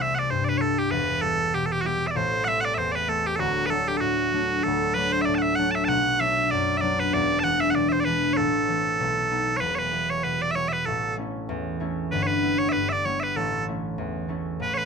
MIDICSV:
0, 0, Header, 1, 3, 480
1, 0, Start_track
1, 0, Tempo, 310720
1, 1423, Time_signature, 4, 2, 24, 8
1, 22943, End_track
2, 0, Start_track
2, 0, Title_t, "Bagpipes"
2, 0, Program_c, 0, 109
2, 29, Note_on_c, 0, 76, 100
2, 232, Note_off_c, 0, 76, 0
2, 233, Note_on_c, 0, 78, 81
2, 292, Note_off_c, 0, 78, 0
2, 292, Note_on_c, 0, 74, 81
2, 471, Note_off_c, 0, 74, 0
2, 471, Note_on_c, 0, 72, 66
2, 689, Note_off_c, 0, 72, 0
2, 689, Note_on_c, 0, 74, 78
2, 757, Note_off_c, 0, 74, 0
2, 757, Note_on_c, 0, 71, 78
2, 893, Note_off_c, 0, 71, 0
2, 893, Note_on_c, 0, 73, 80
2, 947, Note_off_c, 0, 73, 0
2, 947, Note_on_c, 0, 69, 80
2, 1212, Note_off_c, 0, 69, 0
2, 1212, Note_on_c, 0, 67, 76
2, 1405, Note_off_c, 0, 67, 0
2, 1405, Note_on_c, 0, 71, 90
2, 1876, Note_off_c, 0, 71, 0
2, 1876, Note_on_c, 0, 69, 111
2, 2383, Note_off_c, 0, 69, 0
2, 2383, Note_on_c, 0, 67, 77
2, 2561, Note_off_c, 0, 67, 0
2, 2561, Note_on_c, 0, 69, 62
2, 2656, Note_off_c, 0, 69, 0
2, 2656, Note_on_c, 0, 67, 92
2, 2801, Note_off_c, 0, 67, 0
2, 2801, Note_on_c, 0, 66, 64
2, 2882, Note_off_c, 0, 66, 0
2, 2882, Note_on_c, 0, 67, 86
2, 3198, Note_off_c, 0, 67, 0
2, 3198, Note_on_c, 0, 76, 66
2, 3253, Note_off_c, 0, 76, 0
2, 3253, Note_on_c, 0, 74, 66
2, 3346, Note_off_c, 0, 74, 0
2, 3346, Note_on_c, 0, 72, 100
2, 3776, Note_off_c, 0, 72, 0
2, 3776, Note_on_c, 0, 78, 113
2, 3834, Note_off_c, 0, 78, 0
2, 3834, Note_on_c, 0, 76, 113
2, 4030, Note_off_c, 0, 76, 0
2, 4030, Note_on_c, 0, 78, 106
2, 4091, Note_off_c, 0, 78, 0
2, 4091, Note_on_c, 0, 74, 106
2, 4235, Note_off_c, 0, 74, 0
2, 4235, Note_on_c, 0, 76, 81
2, 4294, Note_off_c, 0, 76, 0
2, 4294, Note_on_c, 0, 72, 81
2, 4510, Note_off_c, 0, 72, 0
2, 4510, Note_on_c, 0, 74, 93
2, 4562, Note_off_c, 0, 74, 0
2, 4562, Note_on_c, 0, 71, 93
2, 4773, Note_off_c, 0, 71, 0
2, 4773, Note_on_c, 0, 69, 98
2, 5043, Note_off_c, 0, 69, 0
2, 5043, Note_on_c, 0, 67, 84
2, 5186, Note_off_c, 0, 67, 0
2, 5186, Note_on_c, 0, 69, 88
2, 5252, Note_off_c, 0, 69, 0
2, 5252, Note_on_c, 0, 66, 88
2, 5657, Note_off_c, 0, 66, 0
2, 5657, Note_on_c, 0, 71, 107
2, 5719, Note_off_c, 0, 71, 0
2, 5719, Note_on_c, 0, 69, 107
2, 5991, Note_off_c, 0, 69, 0
2, 5991, Note_on_c, 0, 67, 81
2, 6132, Note_off_c, 0, 67, 0
2, 6132, Note_on_c, 0, 69, 85
2, 6190, Note_off_c, 0, 69, 0
2, 6190, Note_on_c, 0, 66, 85
2, 7161, Note_off_c, 0, 66, 0
2, 7161, Note_on_c, 0, 69, 95
2, 7634, Note_off_c, 0, 69, 0
2, 7634, Note_on_c, 0, 71, 113
2, 7914, Note_off_c, 0, 71, 0
2, 7914, Note_on_c, 0, 72, 107
2, 8056, Note_off_c, 0, 72, 0
2, 8056, Note_on_c, 0, 76, 90
2, 8111, Note_off_c, 0, 76, 0
2, 8111, Note_on_c, 0, 74, 90
2, 8263, Note_off_c, 0, 74, 0
2, 8263, Note_on_c, 0, 81, 62
2, 8313, Note_off_c, 0, 81, 0
2, 8313, Note_on_c, 0, 78, 62
2, 8377, Note_off_c, 0, 78, 0
2, 8377, Note_on_c, 0, 76, 98
2, 8584, Note_off_c, 0, 76, 0
2, 8584, Note_on_c, 0, 78, 107
2, 8822, Note_off_c, 0, 78, 0
2, 8822, Note_on_c, 0, 81, 87
2, 8885, Note_off_c, 0, 81, 0
2, 8885, Note_on_c, 0, 76, 87
2, 9033, Note_off_c, 0, 76, 0
2, 9033, Note_on_c, 0, 81, 109
2, 9090, Note_off_c, 0, 81, 0
2, 9090, Note_on_c, 0, 78, 109
2, 9585, Note_off_c, 0, 78, 0
2, 9585, Note_on_c, 0, 76, 119
2, 10052, Note_off_c, 0, 76, 0
2, 10052, Note_on_c, 0, 74, 93
2, 10460, Note_off_c, 0, 74, 0
2, 10460, Note_on_c, 0, 76, 95
2, 10514, Note_off_c, 0, 76, 0
2, 10514, Note_on_c, 0, 74, 95
2, 10809, Note_off_c, 0, 74, 0
2, 10809, Note_on_c, 0, 71, 95
2, 11025, Note_off_c, 0, 71, 0
2, 11025, Note_on_c, 0, 74, 101
2, 11422, Note_off_c, 0, 74, 0
2, 11422, Note_on_c, 0, 81, 115
2, 11488, Note_off_c, 0, 81, 0
2, 11488, Note_on_c, 0, 78, 115
2, 11750, Note_off_c, 0, 78, 0
2, 11750, Note_on_c, 0, 76, 117
2, 11904, Note_off_c, 0, 76, 0
2, 11904, Note_on_c, 0, 78, 74
2, 11973, Note_off_c, 0, 78, 0
2, 11973, Note_on_c, 0, 74, 74
2, 12181, Note_off_c, 0, 74, 0
2, 12181, Note_on_c, 0, 76, 84
2, 12238, Note_off_c, 0, 76, 0
2, 12238, Note_on_c, 0, 72, 84
2, 12363, Note_off_c, 0, 72, 0
2, 12363, Note_on_c, 0, 74, 99
2, 12431, Note_off_c, 0, 74, 0
2, 12431, Note_on_c, 0, 71, 99
2, 12874, Note_off_c, 0, 71, 0
2, 12874, Note_on_c, 0, 73, 91
2, 12930, Note_off_c, 0, 73, 0
2, 12930, Note_on_c, 0, 69, 91
2, 14782, Note_off_c, 0, 69, 0
2, 14782, Note_on_c, 0, 73, 94
2, 14836, Note_off_c, 0, 73, 0
2, 14836, Note_on_c, 0, 71, 94
2, 15065, Note_off_c, 0, 71, 0
2, 15065, Note_on_c, 0, 73, 89
2, 15120, Note_off_c, 0, 73, 0
2, 15120, Note_on_c, 0, 71, 89
2, 15605, Note_off_c, 0, 71, 0
2, 15605, Note_on_c, 0, 73, 90
2, 15813, Note_off_c, 0, 73, 0
2, 15813, Note_on_c, 0, 71, 81
2, 16096, Note_off_c, 0, 71, 0
2, 16096, Note_on_c, 0, 74, 98
2, 16233, Note_off_c, 0, 74, 0
2, 16233, Note_on_c, 0, 76, 103
2, 16301, Note_off_c, 0, 76, 0
2, 16301, Note_on_c, 0, 73, 103
2, 16502, Note_off_c, 0, 73, 0
2, 16502, Note_on_c, 0, 76, 87
2, 16571, Note_off_c, 0, 76, 0
2, 16571, Note_on_c, 0, 71, 87
2, 16772, Note_off_c, 0, 71, 0
2, 16772, Note_on_c, 0, 69, 71
2, 17222, Note_off_c, 0, 69, 0
2, 18712, Note_on_c, 0, 71, 86
2, 18891, Note_off_c, 0, 71, 0
2, 18891, Note_on_c, 0, 73, 90
2, 18953, Note_off_c, 0, 73, 0
2, 18953, Note_on_c, 0, 71, 90
2, 19441, Note_off_c, 0, 71, 0
2, 19441, Note_on_c, 0, 73, 102
2, 19601, Note_off_c, 0, 73, 0
2, 19601, Note_on_c, 0, 76, 93
2, 19652, Note_on_c, 0, 71, 93
2, 19653, Note_off_c, 0, 76, 0
2, 19913, Note_off_c, 0, 71, 0
2, 19913, Note_on_c, 0, 76, 104
2, 19962, Note_off_c, 0, 76, 0
2, 19962, Note_on_c, 0, 74, 104
2, 20163, Note_off_c, 0, 74, 0
2, 20163, Note_on_c, 0, 73, 87
2, 20388, Note_off_c, 0, 73, 0
2, 20388, Note_on_c, 0, 76, 81
2, 20441, Note_off_c, 0, 76, 0
2, 20441, Note_on_c, 0, 71, 81
2, 20647, Note_off_c, 0, 71, 0
2, 20647, Note_on_c, 0, 69, 75
2, 21085, Note_off_c, 0, 69, 0
2, 22585, Note_on_c, 0, 71, 86
2, 22773, Note_off_c, 0, 71, 0
2, 22773, Note_on_c, 0, 73, 100
2, 22830, Note_off_c, 0, 73, 0
2, 22830, Note_on_c, 0, 71, 100
2, 22943, Note_off_c, 0, 71, 0
2, 22943, End_track
3, 0, Start_track
3, 0, Title_t, "Harp"
3, 0, Program_c, 1, 46
3, 0, Note_on_c, 1, 36, 63
3, 0, Note_on_c, 1, 48, 74
3, 0, Note_on_c, 1, 55, 50
3, 0, Note_on_c, 1, 57, 46
3, 0, Note_on_c, 1, 60, 48
3, 0, Note_on_c, 1, 62, 47
3, 0, Note_on_c, 1, 64, 52
3, 465, Note_on_c, 1, 43, 69
3, 543, Note_off_c, 1, 48, 0
3, 908, Note_off_c, 1, 55, 0
3, 927, Note_on_c, 1, 55, 50
3, 931, Note_off_c, 1, 60, 0
3, 937, Note_on_c, 1, 60, 43
3, 941, Note_off_c, 1, 64, 0
3, 947, Note_on_c, 1, 64, 54
3, 1411, Note_on_c, 1, 28, 66
3, 1417, Note_on_c, 1, 40, 71
3, 1446, Note_off_c, 1, 62, 0
3, 1500, Note_off_c, 1, 36, 0
3, 1500, Note_off_c, 1, 43, 0
3, 1500, Note_off_c, 1, 55, 0
3, 1879, Note_on_c, 1, 55, 50
3, 1889, Note_on_c, 1, 59, 48
3, 1894, Note_off_c, 1, 64, 0
3, 1900, Note_on_c, 1, 64, 49
3, 1982, Note_off_c, 1, 60, 0
3, 2370, Note_on_c, 1, 47, 67
3, 2825, Note_off_c, 1, 55, 0
3, 2839, Note_on_c, 1, 55, 47
3, 2846, Note_off_c, 1, 59, 0
3, 2851, Note_off_c, 1, 64, 0
3, 2852, Note_on_c, 1, 59, 45
3, 2857, Note_on_c, 1, 64, 60
3, 3322, Note_on_c, 1, 33, 67
3, 3333, Note_on_c, 1, 45, 77
3, 3415, Note_off_c, 1, 28, 0
3, 3415, Note_off_c, 1, 40, 0
3, 3415, Note_off_c, 1, 47, 0
3, 3415, Note_off_c, 1, 55, 0
3, 3796, Note_on_c, 1, 55, 50
3, 3802, Note_off_c, 1, 57, 0
3, 3808, Note_on_c, 1, 57, 41
3, 3816, Note_on_c, 1, 60, 59
3, 3909, Note_off_c, 1, 59, 0
3, 4276, Note_on_c, 1, 40, 68
3, 4373, Note_off_c, 1, 45, 0
3, 4716, Note_off_c, 1, 55, 0
3, 4732, Note_off_c, 1, 57, 0
3, 4735, Note_on_c, 1, 55, 52
3, 4738, Note_on_c, 1, 57, 47
3, 4744, Note_off_c, 1, 60, 0
3, 4750, Note_on_c, 1, 60, 54
3, 5223, Note_on_c, 1, 38, 61
3, 5232, Note_on_c, 1, 26, 65
3, 5331, Note_off_c, 1, 33, 0
3, 5331, Note_off_c, 1, 40, 0
3, 5331, Note_off_c, 1, 55, 0
3, 5699, Note_on_c, 1, 54, 54
3, 5701, Note_off_c, 1, 57, 0
3, 5707, Note_on_c, 1, 57, 43
3, 5711, Note_on_c, 1, 62, 48
3, 6194, Note_on_c, 1, 45, 71
3, 6677, Note_off_c, 1, 54, 0
3, 6688, Note_off_c, 1, 57, 0
3, 6692, Note_on_c, 1, 54, 44
3, 6694, Note_on_c, 1, 57, 48
3, 6702, Note_off_c, 1, 62, 0
3, 6708, Note_on_c, 1, 62, 56
3, 6892, Note_off_c, 1, 64, 0
3, 7172, Note_off_c, 1, 26, 0
3, 7175, Note_off_c, 1, 38, 0
3, 7186, Note_on_c, 1, 26, 57
3, 7198, Note_on_c, 1, 38, 74
3, 7644, Note_off_c, 1, 54, 0
3, 7658, Note_on_c, 1, 54, 54
3, 7663, Note_off_c, 1, 62, 0
3, 7666, Note_off_c, 1, 57, 0
3, 7669, Note_on_c, 1, 62, 55
3, 7672, Note_on_c, 1, 57, 43
3, 8133, Note_off_c, 1, 45, 0
3, 8151, Note_on_c, 1, 45, 64
3, 8595, Note_off_c, 1, 54, 0
3, 8613, Note_on_c, 1, 54, 54
3, 8621, Note_off_c, 1, 57, 0
3, 8627, Note_on_c, 1, 57, 53
3, 8628, Note_off_c, 1, 62, 0
3, 8634, Note_on_c, 1, 62, 56
3, 9071, Note_on_c, 1, 35, 64
3, 9082, Note_on_c, 1, 47, 62
3, 9164, Note_off_c, 1, 60, 0
3, 9169, Note_off_c, 1, 26, 0
3, 9169, Note_off_c, 1, 38, 0
3, 9169, Note_off_c, 1, 45, 0
3, 9169, Note_off_c, 1, 54, 0
3, 9576, Note_on_c, 1, 54, 48
3, 9583, Note_on_c, 1, 59, 47
3, 9584, Note_off_c, 1, 62, 0
3, 9590, Note_on_c, 1, 62, 50
3, 10071, Note_on_c, 1, 42, 74
3, 10129, Note_off_c, 1, 47, 0
3, 10513, Note_off_c, 1, 54, 0
3, 10531, Note_on_c, 1, 54, 56
3, 10534, Note_off_c, 1, 59, 0
3, 10540, Note_on_c, 1, 59, 51
3, 10548, Note_off_c, 1, 62, 0
3, 10554, Note_on_c, 1, 62, 55
3, 11009, Note_on_c, 1, 28, 64
3, 11017, Note_on_c, 1, 40, 65
3, 11089, Note_off_c, 1, 35, 0
3, 11089, Note_off_c, 1, 42, 0
3, 11089, Note_off_c, 1, 54, 0
3, 11489, Note_on_c, 1, 52, 46
3, 11494, Note_off_c, 1, 62, 0
3, 11500, Note_on_c, 1, 56, 46
3, 11500, Note_on_c, 1, 62, 59
3, 11593, Note_off_c, 1, 57, 0
3, 11972, Note_on_c, 1, 47, 70
3, 12049, Note_off_c, 1, 52, 0
3, 12436, Note_off_c, 1, 56, 0
3, 12451, Note_on_c, 1, 52, 56
3, 12457, Note_on_c, 1, 56, 43
3, 12461, Note_off_c, 1, 62, 0
3, 12467, Note_on_c, 1, 62, 55
3, 12926, Note_on_c, 1, 33, 57
3, 12942, Note_on_c, 1, 45, 68
3, 13009, Note_off_c, 1, 28, 0
3, 13009, Note_off_c, 1, 47, 0
3, 13010, Note_off_c, 1, 40, 0
3, 13010, Note_off_c, 1, 52, 0
3, 13010, Note_off_c, 1, 56, 0
3, 13415, Note_on_c, 1, 52, 48
3, 13417, Note_on_c, 1, 57, 44
3, 13428, Note_on_c, 1, 60, 51
3, 13521, Note_off_c, 1, 59, 0
3, 13900, Note_on_c, 1, 35, 55
3, 13904, Note_on_c, 1, 47, 69
3, 13970, Note_off_c, 1, 33, 0
3, 13970, Note_off_c, 1, 45, 0
3, 13970, Note_off_c, 1, 52, 0
3, 13992, Note_off_c, 1, 60, 0
3, 14357, Note_off_c, 1, 57, 0
3, 14363, Note_on_c, 1, 57, 45
3, 14373, Note_on_c, 1, 59, 49
3, 14377, Note_on_c, 1, 63, 57
3, 14470, Note_off_c, 1, 62, 0
3, 14845, Note_on_c, 1, 28, 58
3, 14849, Note_on_c, 1, 40, 54
3, 14931, Note_off_c, 1, 35, 0
3, 14931, Note_off_c, 1, 47, 0
3, 14937, Note_off_c, 1, 63, 0
3, 15304, Note_off_c, 1, 59, 0
3, 15311, Note_on_c, 1, 59, 40
3, 15317, Note_on_c, 1, 55, 44
3, 15328, Note_on_c, 1, 64, 48
3, 15819, Note_on_c, 1, 47, 66
3, 16278, Note_off_c, 1, 55, 0
3, 16297, Note_on_c, 1, 55, 43
3, 16298, Note_off_c, 1, 59, 0
3, 16305, Note_on_c, 1, 59, 43
3, 16312, Note_off_c, 1, 64, 0
3, 16318, Note_on_c, 1, 64, 61
3, 16786, Note_on_c, 1, 33, 60
3, 16799, Note_on_c, 1, 45, 70
3, 16854, Note_off_c, 1, 28, 0
3, 16854, Note_off_c, 1, 40, 0
3, 16854, Note_off_c, 1, 47, 0
3, 16854, Note_off_c, 1, 55, 0
3, 17241, Note_off_c, 1, 57, 0
3, 17247, Note_on_c, 1, 57, 51
3, 17271, Note_on_c, 1, 61, 50
3, 17294, Note_off_c, 1, 64, 0
3, 17300, Note_on_c, 1, 64, 54
3, 17746, Note_on_c, 1, 40, 77
3, 17816, Note_off_c, 1, 45, 0
3, 18220, Note_off_c, 1, 57, 0
3, 18224, Note_off_c, 1, 61, 0
3, 18227, Note_on_c, 1, 57, 58
3, 18231, Note_on_c, 1, 61, 49
3, 18234, Note_off_c, 1, 64, 0
3, 18240, Note_on_c, 1, 64, 63
3, 18715, Note_on_c, 1, 31, 60
3, 18717, Note_on_c, 1, 43, 64
3, 18778, Note_off_c, 1, 33, 0
3, 18778, Note_off_c, 1, 40, 0
3, 19193, Note_on_c, 1, 55, 45
3, 19194, Note_off_c, 1, 59, 0
3, 19200, Note_on_c, 1, 59, 43
3, 19201, Note_off_c, 1, 64, 0
3, 19208, Note_on_c, 1, 64, 45
3, 19658, Note_off_c, 1, 43, 0
3, 19676, Note_on_c, 1, 43, 75
3, 20145, Note_off_c, 1, 55, 0
3, 20161, Note_on_c, 1, 55, 53
3, 20165, Note_off_c, 1, 64, 0
3, 20166, Note_off_c, 1, 59, 0
3, 20171, Note_on_c, 1, 64, 48
3, 20172, Note_on_c, 1, 59, 45
3, 20637, Note_on_c, 1, 33, 67
3, 20654, Note_on_c, 1, 45, 63
3, 20703, Note_off_c, 1, 31, 0
3, 20703, Note_off_c, 1, 43, 0
3, 20703, Note_off_c, 1, 55, 0
3, 21125, Note_off_c, 1, 57, 0
3, 21132, Note_on_c, 1, 57, 46
3, 21137, Note_off_c, 1, 61, 0
3, 21141, Note_off_c, 1, 64, 0
3, 21143, Note_on_c, 1, 61, 44
3, 21147, Note_on_c, 1, 64, 59
3, 21596, Note_on_c, 1, 40, 66
3, 21665, Note_off_c, 1, 45, 0
3, 22058, Note_off_c, 1, 57, 0
3, 22064, Note_on_c, 1, 57, 48
3, 22070, Note_off_c, 1, 61, 0
3, 22076, Note_on_c, 1, 61, 43
3, 22078, Note_off_c, 1, 64, 0
3, 22084, Note_on_c, 1, 64, 59
3, 22533, Note_off_c, 1, 33, 0
3, 22548, Note_on_c, 1, 33, 60
3, 22557, Note_on_c, 1, 45, 61
3, 22628, Note_off_c, 1, 40, 0
3, 22943, Note_off_c, 1, 33, 0
3, 22943, Note_off_c, 1, 45, 0
3, 22943, Note_off_c, 1, 57, 0
3, 22943, Note_off_c, 1, 59, 0
3, 22943, Note_off_c, 1, 61, 0
3, 22943, Note_off_c, 1, 64, 0
3, 22943, End_track
0, 0, End_of_file